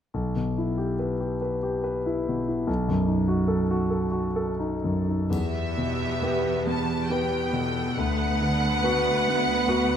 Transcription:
0.14 grand piano B1
0.36 grand piano B2
0.58 grand piano E4
0.78 grand piano G4
0.99 grand piano B4
1.20 grand piano G4
1.42 grand piano B4
1.63 grand piano G4
1.84 grand piano B4
2.06 grand piano E4
2.28 grand piano B2
2.48 grand piano E4
2.67 grand piano B1
2.88 grand piano F#2
3.07 grand piano D#4
3.28 grand piano F#4
3.48 grand piano A4
3.71 grand piano F#4
3.90 grand piano A4
4.11 grand piano F#4
4.36 grand piano A4
4.60 grand piano D#4
4.84 grand piano F#2
5.08 grand piano D#4
5.30 grand piano E2, cello section E2, viola section B3 G4, violin section E5, triangle
5.77 grand piano B2
6.22 grand piano B3 G4 B4
6.67 grand piano B3, violin section A5
7.10 grand piano B3 G4 B4, viola section B3 G4, violin section G5
7.52 grand piano B2, viola section A4
7.97 grand piano D2, cello section D2, viola section B3 B4, violin section F#5
8.41 grand piano D3
8.83 grand piano B3 F#4 B4
9.28 grand piano B3
9.68 grand piano B3 F#4 B4

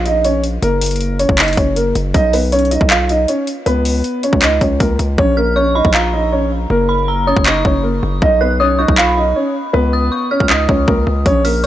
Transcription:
Already playing: 808-style bass A#1
0.06 grand piano D#4 D#5, closed hi-hat
0.25 grand piano C#4 C#5, closed hi-hat
0.44 closed hi-hat
0.62 808-style bass F#1, grand piano A#3 A#4, closed hi-hat
0.81 closed hi-hat, open hi-hat
0.86 closed hi-hat
0.91 closed hi-hat
0.96 closed hi-hat
1.01 closed hi-hat
1.19 grand piano C#4 C#5, closed hi-hat
1.29 808-style bass F#1, kick
1.38 grand piano D#4 D#5, clap, closed hi-hat
1.43 closed hi-hat
1.48 closed hi-hat
1.53 closed hi-hat
1.57 808-style bass F#1, grand piano C#4 C#5, kick, closed hi-hat
1.76 grand piano A#3 A#4, closed hi-hat
1.95 808-style bass F#1, closed hi-hat
2.14 808-style bass B1, grand piano D#4 D#5, kick, closed hi-hat
2.33 grand piano B3 B4, open hi-hat
2.52 grand piano C#4 C#5, closed hi-hat
2.59 closed hi-hat
2.65 closed hi-hat
2.71 grand piano D#4 D#5, closed hi-hat
2.81 808-style bass B1, kick
2.90 grand piano F4 F5, clap, closed hi-hat
3.09 grand piano D#4 D#5, closed hi-hat
3.28 grand piano C#4 C#5, closed hi-hat
3.47 closed hi-hat
3.66 808-style bass C#2, grand piano B3 B4, closed hi-hat
3.85 open hi-hat
4.04 closed hi-hat
4.23 grand piano C#4 C#5, closed hi-hat
4.33 808-style bass C#2, kick
4.42 grand piano D#4 D#5, clap, closed hi-hat
4.61 808-style bass C#2, grand piano C#4 C#5, kick, closed hi-hat
4.80 808-style bass C#2, grand piano A#3 A#4, kick, closed hi-hat
4.99 808-style bass C#2, closed hi-hat
5.18 808-style bass A#1, grand piano C#4 C#5, kick
5.37 grand piano A#3 A#4, synth bell F6
5.56 grand piano C#4 C#5, synth bell C#6
5.75 grand piano D#4 D#5, synth bell B5
5.85 808-style bass A#1, kick
5.94 grand piano F4 F5, synth bell A#5, clap
6.13 grand piano D#4 D#5
6.33 grand piano C#4 C#5
6.70 808-style bass F#1, grand piano A#3 A#4
6.89 synth bell B5
7.08 synth bell A#5
7.27 grand piano C#4 C#5, synth bell D#6
7.37 808-style bass F#1, kick
7.46 grand piano D#4 D#5, synth bell C#6, clap
7.65 808-style bass F#1, grand piano C#4 C#5, kick
7.83 grand piano A#3 A#4
8.03 808-style bass F#1
8.22 808-style bass B1, grand piano D#4 D#5, kick
8.41 grand piano B3 B4, synth bell F#6
8.60 grand piano C#4 C#5, synth bell D#6
8.79 grand piano D#4 D#5, synth bell C#6
8.88 808-style bass B1, kick
8.98 grand piano F4 F5, synth bell B5, clap
9.17 grand piano D#4 D#5
9.36 grand piano C#4 C#5
9.73 808-style bass C#2, grand piano B3 B4
9.93 synth bell D#6
10.12 synth bell C#6
10.31 grand piano C#4 C#5, synth bell F6
10.40 808-style bass C#2, kick
10.50 grand piano D#4 D#5, synth bell D#6, clap
10.69 808-style bass C#2, grand piano C#4 C#5, kick
10.88 808-style bass C#2, grand piano A#3 A#4, kick
11.07 808-style bass C#2
11.26 808-style bass A#1, grand piano C#4 C#5, kick, closed hi-hat
11.45 grand piano A#3 A#4, synth bell F6, open hi-hat

